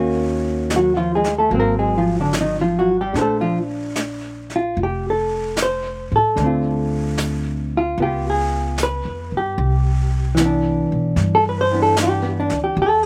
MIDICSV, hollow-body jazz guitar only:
0, 0, Header, 1, 2, 480
1, 0, Start_track
1, 0, Tempo, 809717
1, 1864, Time_signature, 4, 2, 24, 8
1, 3779, Tempo, 800000
1, 7789, End_track
2, 0, Start_track
2, 0, Title_t, "Hollow-body jazz guitar"
2, 0, Program_c, 0, 26
2, 0, Note_on_c, 0, 51, 43
2, 0, Note_on_c, 0, 58, 49
2, 0, Note_on_c, 0, 61, 46
2, 0, Note_on_c, 0, 66, 53
2, 444, Note_off_c, 0, 66, 0
2, 452, Note_on_c, 0, 66, 60
2, 454, Note_off_c, 0, 51, 0
2, 456, Note_on_c, 0, 54, 52
2, 573, Note_off_c, 0, 54, 0
2, 573, Note_off_c, 0, 66, 0
2, 575, Note_on_c, 0, 53, 57
2, 575, Note_on_c, 0, 65, 71
2, 682, Note_off_c, 0, 65, 0
2, 684, Note_on_c, 0, 68, 72
2, 689, Note_off_c, 0, 58, 0
2, 691, Note_on_c, 0, 56, 62
2, 738, Note_off_c, 0, 53, 0
2, 788, Note_off_c, 0, 68, 0
2, 791, Note_off_c, 0, 56, 0
2, 821, Note_on_c, 0, 69, 60
2, 828, Note_on_c, 0, 57, 52
2, 889, Note_on_c, 0, 54, 40
2, 895, Note_off_c, 0, 69, 0
2, 899, Note_off_c, 0, 57, 0
2, 902, Note_off_c, 0, 61, 0
2, 902, Note_on_c, 0, 58, 42
2, 916, Note_on_c, 0, 60, 47
2, 943, Note_off_c, 0, 58, 0
2, 946, Note_on_c, 0, 70, 72
2, 950, Note_on_c, 0, 58, 57
2, 1058, Note_off_c, 0, 58, 0
2, 1059, Note_off_c, 0, 70, 0
2, 1061, Note_on_c, 0, 56, 44
2, 1061, Note_on_c, 0, 68, 56
2, 1170, Note_off_c, 0, 56, 0
2, 1172, Note_on_c, 0, 65, 63
2, 1175, Note_on_c, 0, 53, 52
2, 1222, Note_off_c, 0, 68, 0
2, 1274, Note_off_c, 0, 65, 0
2, 1276, Note_off_c, 0, 53, 0
2, 1303, Note_on_c, 0, 50, 50
2, 1309, Note_on_c, 0, 62, 63
2, 1379, Note_off_c, 0, 50, 0
2, 1380, Note_off_c, 0, 62, 0
2, 1427, Note_on_c, 0, 63, 57
2, 1431, Note_on_c, 0, 51, 45
2, 1547, Note_off_c, 0, 51, 0
2, 1547, Note_off_c, 0, 63, 0
2, 1549, Note_on_c, 0, 65, 60
2, 1550, Note_on_c, 0, 53, 43
2, 1652, Note_off_c, 0, 54, 0
2, 1653, Note_on_c, 0, 66, 65
2, 1659, Note_on_c, 0, 54, 54
2, 1708, Note_off_c, 0, 65, 0
2, 1709, Note_off_c, 0, 53, 0
2, 1756, Note_off_c, 0, 66, 0
2, 1759, Note_off_c, 0, 54, 0
2, 1784, Note_on_c, 0, 55, 49
2, 1784, Note_on_c, 0, 67, 57
2, 1859, Note_off_c, 0, 67, 0
2, 1860, Note_off_c, 0, 55, 0
2, 1870, Note_on_c, 0, 62, 43
2, 1873, Note_off_c, 0, 60, 0
2, 1880, Note_on_c, 0, 69, 48
2, 1889, Note_on_c, 0, 72, 50
2, 1898, Note_off_c, 0, 69, 0
2, 1905, Note_on_c, 0, 69, 75
2, 1910, Note_on_c, 0, 57, 60
2, 2019, Note_off_c, 0, 69, 0
2, 2022, Note_on_c, 0, 65, 68
2, 2025, Note_on_c, 0, 53, 59
2, 2047, Note_off_c, 0, 57, 0
2, 2122, Note_off_c, 0, 65, 0
2, 2124, Note_off_c, 0, 53, 0
2, 2702, Note_on_c, 0, 65, 59
2, 2838, Note_off_c, 0, 65, 0
2, 2865, Note_on_c, 0, 67, 67
2, 3000, Note_off_c, 0, 67, 0
2, 3024, Note_on_c, 0, 69, 66
2, 3301, Note_off_c, 0, 69, 0
2, 3327, Note_off_c, 0, 72, 0
2, 3334, Note_on_c, 0, 72, 75
2, 3615, Note_off_c, 0, 72, 0
2, 3650, Note_on_c, 0, 69, 64
2, 3768, Note_on_c, 0, 50, 39
2, 3781, Note_off_c, 0, 62, 0
2, 3792, Note_on_c, 0, 57, 44
2, 3814, Note_on_c, 0, 60, 46
2, 3832, Note_on_c, 0, 65, 46
2, 4361, Note_off_c, 0, 69, 0
2, 4611, Note_off_c, 0, 65, 0
2, 4618, Note_on_c, 0, 65, 68
2, 4735, Note_off_c, 0, 50, 0
2, 4747, Note_off_c, 0, 57, 0
2, 4753, Note_off_c, 0, 60, 0
2, 4755, Note_off_c, 0, 65, 0
2, 4755, Note_on_c, 0, 59, 47
2, 4767, Note_on_c, 0, 65, 50
2, 4768, Note_on_c, 0, 67, 71
2, 4910, Note_off_c, 0, 67, 0
2, 4933, Note_on_c, 0, 68, 64
2, 5216, Note_off_c, 0, 68, 0
2, 5253, Note_on_c, 0, 71, 82
2, 5535, Note_off_c, 0, 71, 0
2, 5577, Note_on_c, 0, 67, 65
2, 5708, Note_off_c, 0, 59, 0
2, 5714, Note_off_c, 0, 65, 0
2, 6163, Note_on_c, 0, 52, 49
2, 6195, Note_on_c, 0, 59, 46
2, 6228, Note_on_c, 0, 62, 46
2, 6282, Note_off_c, 0, 67, 0
2, 6763, Note_on_c, 0, 69, 81
2, 6813, Note_off_c, 0, 69, 0
2, 6848, Note_on_c, 0, 71, 67
2, 6917, Note_off_c, 0, 71, 0
2, 6920, Note_on_c, 0, 72, 96
2, 6975, Note_off_c, 0, 52, 0
2, 6983, Note_on_c, 0, 52, 42
2, 6986, Note_off_c, 0, 59, 0
2, 6990, Note_off_c, 0, 62, 0
2, 6993, Note_on_c, 0, 59, 44
2, 6997, Note_on_c, 0, 62, 39
2, 7025, Note_off_c, 0, 72, 0
2, 7048, Note_on_c, 0, 69, 90
2, 7128, Note_off_c, 0, 69, 0
2, 7169, Note_on_c, 0, 67, 74
2, 7282, Note_off_c, 0, 59, 0
2, 7289, Note_on_c, 0, 59, 52
2, 7313, Note_off_c, 0, 67, 0
2, 7385, Note_off_c, 0, 62, 0
2, 7392, Note_on_c, 0, 62, 74
2, 7454, Note_off_c, 0, 59, 0
2, 7501, Note_off_c, 0, 62, 0
2, 7536, Note_on_c, 0, 67, 63
2, 7613, Note_off_c, 0, 67, 0
2, 7616, Note_off_c, 0, 52, 0
2, 7645, Note_on_c, 0, 69, 89
2, 7772, Note_off_c, 0, 69, 0
2, 7789, End_track
0, 0, End_of_file